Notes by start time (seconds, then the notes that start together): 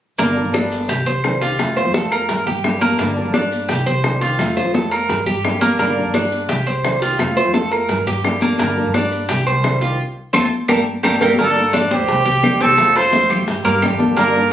0.18 G1 D3 G3 A#3 D4 A4, high bongo, high conga, maracas
0.36 G3 A#3 D4 A4, high conga, maracas
0.45 G1
0.53 G3 A#3 D4 A4, high bongo, high conga, claves, maracas
0.71 high conga, maracas
0.88 C2 G4, muted steel-string acoustic guitar stroke, high bongo, high conga, maracas
1.06 C2 C5, high conga, maracas
1.24 D#3 G3 C4 G4, high bongo, low bongo, high conga, claves, maracas
1.41 D#3 G3 C4 F4 G4, high conga, maracas
1.59 F2 C3 F3 A3 C4 F4, high bongo, high conga, claves, maracas
1.76 F3 A3 C4 F4 C5, high conga, maracas
1.85 F2
1.94 F3 A3 C4 F4 A4, high bongo, high conga, maracas
2.12 A#4, high bongo, claves, maracas
2.29 G2, muted steel-string acoustic guitar stroke, high bongo, high conga, maracas
2.46 G2 G4, high bongo, high conga, maracas
2.64 G3 A#3 D4 A4, high bongo, low bongo, high conga, claves, maracas
2.81 G3 A#3 D4 A4, high bongo, high conga, maracas
2.99 G2 D3 G3 A#3 D4 A4, high bongo, high conga, maracas
3.17 G3 A#3 D4 A4, high conga, maracas
3.25 G2
3.34 G3 A#3 D4 A4, high bongo, high conga, claves, maracas
3.52 high conga, maracas
3.68 C2 G4, muted steel-string acoustic guitar stroke, high bongo, high conga, maracas
3.86 C2 C5, high conga, maracas
4.04 D#3 G3 C4 G4, high bongo, low bongo, high conga, claves, maracas
4.21 D#3 G3 C4 F4 G4, high conga, maracas
4.38 F2 C3 F3 A3 C4 F4, high bongo, high conga, claves, maracas
4.56 F3 A3 C4 F4 C5, high conga, maracas
4.65 F2
4.74 F3 A3 C4 F4 A4, high bongo, high conga, maracas
4.91 A#4, high bongo, claves, maracas
5.09 G2, muted steel-string acoustic guitar stroke, high bongo, high conga, maracas
5.26 G2 G4, high bongo, high conga, maracas
5.44 G3 A#3 D4 A4, high bongo, low bongo, high conga, claves, maracas
5.61 G3 A#3 D4 A4, high bongo, high conga, maracas
5.78 G2 D3 G3 A#3 D4 A4, high bongo, high conga, maracas
5.96 G3 A#3 D4 A4, high conga, maracas
6.05 G2
6.14 G3 A#3 D4 A4, high bongo, high conga, claves, maracas
6.32 high conga, maracas
6.49 C2 G4, muted steel-string acoustic guitar stroke, high bongo, high conga, maracas
6.66 C2 C5, high conga, maracas
6.84 D#3 G3 C4 G4, high bongo, low bongo, high conga, claves, maracas
7.01 D#3 G3 C4 F4 G4, high conga, maracas
7.19 F2 C3 F3 A3 C4 F4, high bongo, high conga, claves, maracas
7.36 F3 A3 C4 F4 C5, high conga, maracas
7.45 F2
7.54 F3 A3 C4 F4 A4, high bongo, high conga, maracas
7.71 A#4, high bongo, claves, maracas
7.89 G2, muted steel-string acoustic guitar stroke, high bongo, high conga, maracas
8.06 G2 G4, high bongo, high conga, maracas
8.24 G3 A#3 D4 A4, high bongo, low bongo, high conga, claves, maracas
8.41 G3 A#3 D4 A4, high bongo, high conga, maracas
8.59 G2 D3 G3 A#3 D4 A4, high bongo, high conga, maracas
8.76 G3 A#3 D4 A4, high conga, maracas
8.85 G2
8.94 G3 A#3 D4 A4, high bongo, high conga, claves, maracas
9.12 high conga, maracas
9.29 C2 G4, muted steel-string acoustic guitar stroke, high bongo, high conga, maracas
9.46 C2 C5, high conga, maracas
9.63 D#3 G3 C4 G4, high bongo, low bongo, high conga, claves, maracas
9.81 D#3 G3 C4 F4 G4, high conga, maracas
10.33 F2 F3 A3 C4 F4 A4, low bongo, high conga, claves, maracas
10.68 G1 A3 A#3 D4 G4 A4 A#4, low bongo, high conga, claves, maracas
11.03 G1 A3 A#3 D4 G4 A4 A#4, low bongo, high conga, claves, maracas
11.21 G1 A3 A#3 D4 G4 A4 A#4, low bongo, high conga, claves, maracas
11.38 G2 D3 G3 A#3 D4 A4, high bongo, high conga, maracas
11.56 G3 A#3 D4 A4, high bongo, high conga, maracas
11.73 G3 A#3 D4 A4, high bongo, high conga, claves, maracas
11.91 D2 G4 C5, high conga, maracas
12.08 C2, muted steel-string acoustic guitar stroke, high bongo, high conga, maracas
12.26 C2 G4, high bongo, high conga, maracas
12.43 D#3 G3 C4 G4, high bongo, low bongo, high conga, claves, maracas
12.52 C2
12.60 C2 D#3 G3 C4 G4 A4, high bongo, high conga, maracas
12.78 F2 C3 F3 A3 C4 F4, high bongo, high conga, claves, maracas
12.95 F3 A3 C4 F4 C5, high bongo, high conga, maracas
13.12 F3 A3 C4 F4, high bongo, high conga, maracas
13.30 D2 G4, high conga, low conga, claves, maracas
13.47 G2, muted steel-string acoustic guitar stroke, high bongo, high conga, maracas
13.65 G2 A#3, high bongo, high conga, maracas
13.82 G3 A#3 D4 G4 A4, high bongo, low bongo, high conga, claves, maracas
13.90 G2
13.99 D2 G3 A#3 D4 A4, high bongo, high conga, maracas
14.16 G2 D3 G3 A#3 D4 A4 A#4, high bongo, maracas
14.34 G3 A#3 D4 A4, high bongo, high conga, maracas